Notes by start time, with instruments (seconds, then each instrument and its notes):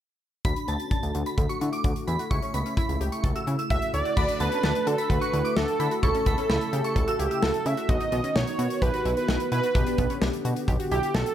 0.45 analog synth bass D2, analog synth pad D3 A3 F#4, synth pluck F#4, synth bell B5, kick, closed hi-hat
0.56 synth pluck D4, closed hi-hat
0.68 analog synth bass D2, synth pluck B3, synth bell A5, closed hi-hat
0.80 synth pluck C#4, closed hi-hat
0.91 synth pluck D4, synth bell A5, kick, closed hi-hat
1.03 analog synth bass D2, closed hi-hat
1.15 analog synth bass D2, synth pluck F#4, closed hi-hat
1.26 synth bell B5, closed hi-hat
1.38 analog synth bass D2, synth pluck A4, kick, closed hi-hat
1.49 synth pluck F#4, synth bell C#6, closed hi-hat
1.61 analog synth bass D3, synth pluck E4, closed hi-hat
1.73 synth bell D6, closed hi-hat
1.84 analog synth bass D2, synth pluck F#4, kick, closed hi-hat
1.96 closed hi-hat
2.07 analog synth bass E2, synth pluck E4, synth bell B5, closed hi-hat
2.19 synth pluck F#4, closed hi-hat
2.31 analog synth bass C#2, analog synth pad C#3 E4, synth pluck E4, synth bell C#6, kick, closed hi-hat
2.42 synth pluck C#4, closed hi-hat
2.54 analog synth bass C#2, synth pluck B3, synth bell B5, closed hi-hat
2.66 synth pluck C#4, closed hi-hat
2.77 synth pluck E4, synth bell B5, kick, closed hi-hat
2.89 analog synth bass C#2, closed hi-hat
3.01 analog synth bass C#2, synth pluck G4, closed hi-hat
3.12 synth bell C#6, closed hi-hat
3.24 analog synth bass C#2, synth pluck A4, kick, closed hi-hat
3.36 synth pluck F#4, synth bell E6, closed hi-hat
3.47 analog synth bass C#3, synth pluck E4, closed hi-hat
3.59 synth bell E6, closed hi-hat
3.70 analog synth bass C#2, synth pluck F#4, analog synth lead E5, kick, closed hi-hat
3.82 closed hi-hat
3.94 analog synth bass D2, synth pluck E4, analog synth lead D5, closed hi-hat
4.05 synth pluck F#4, closed hi-hat
4.17 analog synth bass D2, analog synth pad D3 A3 F#4, synth pluck F#4, synth bell B5, kick, crash
4.28 synth pluck D4, closed hi-hat
4.40 analog synth bass D2, synth pluck B3, analog synth lead B4, synth bell A5, closed hi-hat
4.52 synth pluck C#4, closed hi-hat
4.63 analog synth bass D2, synth pluck D4, synth bell A5, snare
4.75 closed hi-hat
4.87 analog synth bass D3, synth pluck F#4, analog synth lead A4, closed hi-hat
4.98 synth bell B5, closed hi-hat
5.10 analog synth bass D2, synth pluck A4, analog synth lead B4, kick, closed hi-hat
5.21 synth pluck F#4, synth bell C#6, closed hi-hat
5.33 analog synth bass D2, synth pluck E4, closed hi-hat
5.45 synth bell D6, closed hi-hat
5.57 analog synth bass D2, synth pluck F#4, analog synth lead A4, snare
5.68 closed hi-hat
5.80 analog synth bass D3, synth pluck E4, synth bell B5, closed hi-hat
5.91 synth pluck F#4, closed hi-hat
6.03 analog synth bass C#2, analog synth pad C#3 E4, synth pluck E4, analog synth lead A4, synth bell C#6, kick, closed hi-hat
6.15 synth pluck C#4, closed hi-hat
6.26 analog synth bass C#2, synth pluck B3, synth bell B5, kick, closed hi-hat
6.38 synth pluck C#4, closed hi-hat
6.49 analog synth bass C#2, synth pluck E4, synth bell B5, snare
6.61 closed hi-hat
6.73 analog synth bass C#3, synth pluck G4, closed hi-hat
6.84 synth bell C#6, closed hi-hat
6.96 analog synth bass C#2, synth pluck A4, kick, closed hi-hat
7.08 synth pluck F#4, synth bell E6, closed hi-hat
7.19 analog synth bass C#2, synth pluck E4, analog synth lead G4, closed hi-hat
7.31 synth bell E6, closed hi-hat
7.43 analog synth bass C#2, synth pluck F#4, analog synth lead A4, snare
7.54 closed hi-hat
7.66 analog synth bass C#3, synth pluck E4, analog synth lead E5, closed hi-hat
7.77 synth pluck F#4, closed hi-hat
7.89 analog synth bass B1, analog synth pad D#3 B3 F#4, synth pluck F#4, analog synth lead D#5, kick, closed hi-hat
8.00 synth pluck D#4, closed hi-hat
8.12 analog synth bass B1, synth pluck B3, closed hi-hat
8.24 synth pluck C#4, closed hi-hat
8.36 analog synth bass B1, synth pluck D#4, analog synth lead C#5, snare
8.47 closed hi-hat
8.59 analog synth bass B2, synth pluck F#4, closed hi-hat
8.70 closed hi-hat
8.82 analog synth bass B1, synth pluck G4, analog synth lead B4, kick, closed hi-hat
8.94 synth pluck F#4, closed hi-hat
9.05 analog synth bass B1, synth pluck E4, closed hi-hat
9.17 analog synth lead B4, closed hi-hat
9.29 analog synth bass B1, synth pluck F#4, snare
9.40 closed hi-hat
9.52 analog synth bass B2, synth pluck E4, analog synth lead B4, closed hi-hat
9.63 synth pluck F#4, closed hi-hat
9.75 analog synth bass B1, analog synth pad D3 G4, synth pluck G4, kick, closed hi-hat
9.87 synth pluck D4, closed hi-hat
9.98 analog synth bass B1, synth pluck B3, kick, closed hi-hat
10.10 synth pluck C#4, closed hi-hat
10.22 analog synth bass B1, synth pluck D4, snare
10.33 closed hi-hat
10.45 analog synth bass B2, synth pluck F#4, closed hi-hat
10.56 closed hi-hat
10.68 analog synth bass B1, synth pluck G4, kick, closed hi-hat
10.80 synth pluck F#4, closed hi-hat
10.91 analog synth bass B1, synth pluck E4, analog synth lead G4, closed hi-hat
11.03 closed hi-hat
11.15 analog synth bass B1, synth pluck F#4, analog synth lead A4, snare
11.26 closed hi-hat